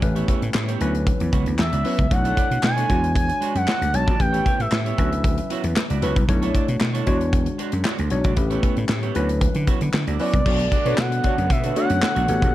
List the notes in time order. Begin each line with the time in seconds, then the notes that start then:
0.02 A1 A3 C#4 G4 B4, muted clean electric guitar stroke, kick, closed hi-hat
0.16 B3 E4 G4 C#5, closed hi-hat
0.28 B3 E4 G4 C#5, kick, closed hi-hat
0.42 A2, muted clean electric guitar stroke, closed hi-hat
0.54 A2, muted clean electric guitar stroke, snare, clap
0.68 B3 E4 G4 C#5, closed hi-hat
0.80 D2 F#3 B3 C#4 E4 F#4 B4 C#5, closed hi-hat
0.94 muted clean electric guitar stroke, closed hi-hat
1.07 kick, closed hi-hat
1.20 E2, muted clean electric guitar stroke, closed hi-hat
1.32 C#2 B3 E4 F#4 C#5, kick, closed hi-hat
1.46 D2, muted clean electric guitar stroke, closed hi-hat
1.59 E2 E5, snare, clap
1.72 C#2 B3 E4 F#4 D5, closed hi-hat
1.84 F#3 B3 C#4 E4 F#4 B4 C#5, open hi-hat
1.99 C#2, kick, closed hi-hat
2.11 B1 A3 D4 E4 C#5 F#5, muted clean electric guitar stroke, kick, closed hi-hat
2.24 D4 E4 A4 C#5, closed hi-hat
2.36 D4 E4 A4 D5, kick, closed hi-hat
2.50 B2, muted clean electric guitar stroke, closed hi-hat
2.63 B2 G#5, snare, clap
2.76 D4 E4 A4 C#5, closed hi-hat
2.88 E2 G#3 D4 F#4 C#5, kick, closed hi-hat
3.02 muted clean electric guitar stroke, closed hi-hat
3.15 G#5, kick, closed hi-hat
3.29 muted clean electric guitar stroke, closed hi-hat
3.41 G#3 D4 F#4 C#5, closed hi-hat
3.55 F#2 F#5, muted clean electric guitar stroke, closed hi-hat
3.67 G#3 D4 F#4 C#5, snare, clap
3.80 D2, muted clean electric guitar stroke, closed hi-hat
3.93 B1 G#3 D4 F#4 C#5 A5, muted clean electric guitar stroke, closed hi-hat
4.07 A#1 G#3 D4 F#4 D5, kick, closed hi-hat
4.19 A1 A3 C#4 G4 B4 G5, muted clean electric guitar stroke, kick, closed hi-hat
4.33 B3 E4 G4 C#5, closed hi-hat
4.45 B3 E4 G4 C#5, kick, closed hi-hat
4.59 A2 E5, muted clean electric guitar stroke, closed hi-hat
4.71 A2, muted clean electric guitar stroke, snare, clap
4.85 B3 E4 G4 C#5, closed hi-hat
4.97 D2 F#3 B3 C#4 E4 F#4 B4 C#5, kick, closed hi-hat
5.11 muted clean electric guitar stroke, closed hi-hat
5.24 kick, closed hi-hat
5.37 muted clean electric guitar stroke, closed hi-hat
5.50 B3 E4 F#4 C#5, closed hi-hat
5.64 E2, muted clean electric guitar stroke, closed hi-hat
5.76 muted clean electric guitar stroke, snare, clap
5.90 C#2 B3 E4 F#4 D5, closed hi-hat
6.02 C#2 F#3 B3 C#4 E4 F#4 B4 C#5, closed hi-hat
6.16 C2, muted clean electric guitar stroke, kick, closed hi-hat
6.28 B1 A3 D4 E4 C#5, kick, closed hi-hat
6.42 D4 E4 A4 C#5, closed hi-hat
6.54 D4 E4 A4 D5, kick, closed hi-hat
6.68 B2, muted clean electric guitar stroke, closed hi-hat
6.80 B2, muted clean electric guitar stroke, snare, clap
6.94 D4 E4 A4 C#5, closed hi-hat
7.06 E2 G#3 D4 F#4 C#5, kick, closed hi-hat
7.20 muted clean electric guitar stroke, closed hi-hat
7.33 kick, closed hi-hat
7.46 muted clean electric guitar stroke, closed hi-hat
7.58 G#3 D4 F#4 C#5, closed hi-hat
7.72 F#2, muted clean electric guitar stroke, closed hi-hat
7.84 G#3 D4 F#4 C#5, snare, clap
7.98 D2, muted clean electric guitar stroke, closed hi-hat
8.10 B1 G#3 D4 F#4 C#5, muted clean electric guitar stroke, closed hi-hat
8.24 A#1 G#3 D4 F#4 D5, kick, closed hi-hat
8.36 A1 A3 C#4 G4 B4, muted clean electric guitar stroke, kick, closed hi-hat
8.50 B3 E4 G4 C#5, closed hi-hat
8.62 B3 E4 G4 C#5, kick, closed hi-hat
8.76 A2, muted clean electric guitar stroke, closed hi-hat
8.89 A2, muted clean electric guitar stroke, snare, clap
9.03 B3 E4 G4 C#5, closed hi-hat
9.15 D2 F#3 B3 C#4 E4 F#4 B4 C#5, closed hi-hat
9.29 muted clean electric guitar stroke, closed hi-hat
9.41 kick, closed hi-hat
9.55 D3, muted clean electric guitar stroke, closed hi-hat
9.67 B3 E4 F#4 C#5, kick, closed hi-hat
9.81 D3, muted clean electric guitar stroke, closed hi-hat
9.94 D3, muted clean electric guitar stroke, snare, clap
10.07 D2 B3 E4 F#4 D5, closed hi-hat
10.19 F#3 B3 C#4 E4 F#4 B4 C#5 D5, open hi-hat
10.33 C2, muted clean electric guitar stroke, kick, closed hi-hat
10.46 B1 D3 A3 B3 D4 F#4 A4 C#5 D5, kick, crash
10.59 muted clean electric guitar stroke, closed hi-hat
10.72 A3 D4 F#4 D5, kick, closed hi-hat
10.85 B2 A3 B3 D4 F#4 A4 B4 C#5 D5, closed hi-hat
10.97 B2 F#5, muted clean electric guitar stroke, snare, clap
11.11 muted clean electric guitar stroke, closed hi-hat
11.23 A3 D4 F#4 A4 C#5 D5, kick, closed hi-hat
11.37 F#2, muted clean electric guitar stroke, closed hi-hat
11.50 B2 E5, muted clean electric guitar stroke, kick, closed hi-hat
11.63 A3 D4 F#4 B4 C#5, closed hi-hat
11.76 A3 B3 D4 F#4 A4 C#5 F#5, closed hi-hat
11.90 F#2, muted clean electric guitar stroke, closed hi-hat
12.02 muted clean electric guitar stroke, snare, clap
12.15 B1 A3 D4 F#4 C#5, closed hi-hat
12.28 A1 C#3 G3 B3 F#4 G4 A4 C#5, muted clean electric guitar stroke, closed hi-hat
12.41 A#1, muted clean electric guitar stroke, kick, closed hi-hat